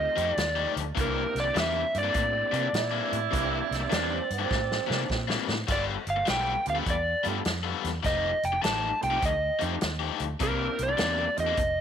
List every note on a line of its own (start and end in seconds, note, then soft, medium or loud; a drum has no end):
0.00 0.25 A3 medium
0.00 0.25 C4 medium
0.00 0.25 D#4 medium
0.00 0.25 F4 medium
0.00 0.26 G4 medium
0.00 0.35 D#5 medium
0.16 0.32 F2 medium
0.16 0.30 F3 medium
0.16 0.30 A3 medium
0.16 0.30 D#4 medium
0.16 0.30 G4 medium
0.16 closed hi-hat medium
0.35 0.65 D#2 medium
0.35 0.73 D5 medium
0.35 snare loud
0.35 closed hi-hat medium
0.56 0.80 F3 medium
0.56 0.79 A3 medium
0.56 0.79 D#4 medium
0.56 0.79 G4 medium
0.76 0.91 D2 medium
0.76 closed hi-hat medium
0.95 1.24 C2 medium
0.95 1.21 C3 medium
0.95 1.21 E3 medium
0.95 1.86 A#3 medium
0.95 1.21 A#3 medium
0.95 1.86 C4 medium
0.95 1.22 D4 loud
0.95 1.86 D4 medium
0.95 1.87 E4 medium
0.95 1.87 G4 medium
0.95 kick loud
0.95 closed hi-hat medium
1.01 1.39 A#4 loud
1.35 1.49 C2 medium
1.35 snare soft
1.35 closed hi-hat medium
1.40 1.59 D5 medium
1.40 muted overdriven electric guitar stroke soft
1.54 1.83 E2 medium
1.54 1.80 C3 medium
1.54 1.80 E3 medium
1.54 1.81 A#3 medium
1.54 1.81 D4 medium
1.54 snare loud
1.54 closed hi-hat medium
1.60 1.98 E5 medium
1.94 2.09 G2 medium
1.94 2.70 A#3 medium
1.94 2.70 C4 medium
1.94 2.70 D4 medium
1.94 2.70 E4 medium
1.94 2.70 G4 medium
1.94 5.07 D5 medium
1.94 closed hi-hat medium
2.03 2.21 C3 medium
2.03 2.21 E3 medium
2.03 2.20 A#3 medium
2.03 2.20 D4 medium
2.14 2.42 A2 medium
2.14 kick loud
2.14 closed hi-hat medium
2.52 2.66 C3 medium
2.52 2.67 C3 medium
2.52 2.66 E3 medium
2.52 2.66 A#3 medium
2.52 2.66 D4 medium
2.52 closed hi-hat medium
2.73 3.00 A#2 medium
2.73 3.89 E4 loud
2.73 snare loud
2.73 closed hi-hat medium
2.91 3.15 C3 medium
2.91 3.15 E3 medium
2.91 3.15 A#3 medium
2.91 3.14 D4 medium
3.13 3.27 A2 medium
3.13 closed hi-hat medium
3.31 3.60 C2 medium
3.31 3.57 C3 medium
3.31 3.57 E3 medium
3.31 3.58 A#3 medium
3.31 4.22 A#3 medium
3.31 4.23 C4 medium
3.31 3.57 D4 medium
3.31 4.23 D4 medium
3.31 4.23 E4 medium
3.31 4.23 G4 medium
3.31 kick loud
3.31 closed hi-hat medium
3.71 3.85 C2 medium
3.71 snare soft
3.71 closed hi-hat medium
3.80 muted overdriven electric guitar stroke soft
3.90 4.19 E2 medium
3.90 4.16 C3 medium
3.90 4.16 E3 medium
3.90 4.16 A#3 medium
3.90 4.17 D4 medium
3.90 4.16 D4 medium
3.90 snare loud
3.90 closed hi-hat medium
4.14 4.32 C4 medium
4.31 4.45 G2 medium
4.31 5.46 C4 medium
4.31 closed hi-hat medium
4.39 4.56 C3 medium
4.39 4.56 E3 medium
4.39 4.56 A#3 medium
4.39 4.55 D4 medium
4.51 4.78 A2 medium
4.51 kick loud
4.51 snare medium
4.72 snare medium
4.87 5.01 C3 medium
4.87 5.04 C3 medium
4.87 5.02 E3 medium
4.87 5.02 A#3 medium
4.87 5.02 D4 medium
4.91 snare medium
5.09 5.37 A#2 medium
5.09 kick medium
5.09 snare medium
5.28 5.51 C3 medium
5.28 5.51 E3 medium
5.28 5.51 A#3 medium
5.28 5.51 D4 medium
5.28 snare medium
5.48 5.63 A2 medium
5.48 snare medium
5.67 5.96 G1 medium
5.67 5.93 G3 medium
5.67 5.93 B3 medium
5.67 5.93 F4 medium
5.67 5.94 A4 medium
5.67 kick loud
5.67 snare soft
5.67 closed hi-hat medium
5.67 crash medium
5.72 5.82 D5 medium
6.07 6.21 G1 medium
6.07 6.29 F5 medium
6.07 closed hi-hat medium
6.16 muted overdriven electric guitar stroke soft
6.26 6.55 B1 medium
6.26 6.52 G3 medium
6.26 6.52 B3 medium
6.26 6.52 F4 medium
6.26 6.52 A4 medium
6.26 snare loud
6.26 closed hi-hat medium
6.30 6.65 G5 medium
6.66 6.81 D2 medium
6.66 6.84 A3 medium
6.66 6.84 B3 medium
6.66 6.85 D4 medium
6.66 6.85 F4 medium
6.66 6.85 G4 medium
6.66 closed hi-hat medium
6.70 6.75 F5 medium
6.75 6.92 G3 medium
6.75 6.92 B3 medium
6.75 6.92 F4 medium
6.75 6.92 A4 medium
6.86 7.13 E2 medium
6.86 kick loud
6.86 closed hi-hat medium
6.90 7.24 D5 medium
7.24 7.40 G2 medium
7.24 7.37 G3 medium
7.24 7.43 A3 medium
7.24 7.38 B3 medium
7.24 7.43 B3 medium
7.24 7.43 D4 medium
7.24 7.38 F4 medium
7.24 7.44 F4 medium
7.24 7.44 G4 medium
7.24 7.38 A4 medium
7.24 closed hi-hat medium
7.45 7.73 F2 medium
7.45 snare loud
7.45 closed hi-hat medium
7.63 7.87 G3 medium
7.63 7.87 B3 medium
7.63 7.87 F4 medium
7.63 7.86 A4 medium
7.84 7.98 E2 medium
7.84 snare soft
7.84 closed hi-hat medium
8.03 8.31 F1 medium
8.03 8.29 F3 medium
8.03 8.29 A3 medium
8.03 8.29 D#4 medium
8.03 8.29 G4 medium
8.03 8.45 D#5 medium
8.03 kick loud
8.03 snare soft
8.03 closed hi-hat medium
8.43 8.57 F1 medium
8.43 8.64 G5 medium
8.43 closed hi-hat medium
8.52 muted overdriven electric guitar stroke soft
8.62 8.91 A1 medium
8.62 8.88 F3 medium
8.62 8.88 A3 medium
8.62 8.88 D#4 medium
8.62 8.88 G4 medium
8.62 9.03 A5 medium
8.62 snare loud
8.62 closed hi-hat medium
9.01 9.17 C2 medium
9.01 9.19 A3 medium
9.01 9.20 C4 medium
9.01 9.20 D#4 medium
9.01 9.20 F4 medium
9.01 9.20 G4 medium
9.01 9.22 G5 medium
9.01 closed hi-hat medium
9.10 9.28 F3 medium
9.10 9.27 A3 medium
9.10 9.27 D#4 medium
9.10 9.27 G4 medium
9.22 9.49 D2 medium
9.22 9.60 D#5 medium
9.22 kick loud
9.22 closed hi-hat medium
9.59 9.76 F2 medium
9.59 9.73 F3 medium
9.59 9.73 A3 medium
9.59 9.79 A3 medium
9.59 9.79 C4 medium
9.59 9.74 D#4 medium
9.59 9.79 D#4 medium
9.59 9.79 F4 medium
9.59 9.74 G4 medium
9.59 9.80 G4 medium
9.59 closed hi-hat medium
9.81 10.09 D#2 medium
9.81 snare loud
9.81 closed hi-hat medium
9.99 10.23 F3 medium
9.99 10.23 A3 medium
9.99 10.22 D#4 medium
9.99 10.22 G4 loud
10.20 10.34 D2 medium
10.20 closed hi-hat medium
10.40 10.67 C2 medium
10.40 10.65 C3 medium
10.40 10.65 E3 medium
10.40 11.30 A#3 medium
10.40 10.65 A#3 medium
10.40 11.30 C4 medium
10.40 11.30 D4 medium
10.40 10.65 D4 medium
10.40 11.30 E4 medium
10.40 11.31 G4 medium
10.40 10.81 A#4 loud
10.40 kick loud
10.40 closed hi-hat medium
10.79 10.93 C2 medium
10.79 closed hi-hat medium
10.83 11.40 D5 medium
10.89 muted overdriven electric guitar stroke soft
10.98 11.26 E2 medium
10.98 11.23 C3 medium
10.98 11.23 E3 medium
10.98 11.23 A#3 medium
10.98 11.24 D4 medium
10.98 snare loud
10.98 closed hi-hat medium
11.36 11.52 E2 medium
11.36 11.54 A3 medium
11.36 11.55 C4 medium
11.36 11.55 D#4 medium
11.36 11.55 F4 medium
11.36 11.55 G4 medium
11.36 closed hi-hat medium
11.40 11.81 D#5 loud
11.46 11.58 C3 medium
11.46 11.57 E3 medium
11.46 11.57 A#3 medium
11.46 11.57 D4 medium
11.57 11.81 F1 medium
11.57 kick loud
11.57 closed hi-hat medium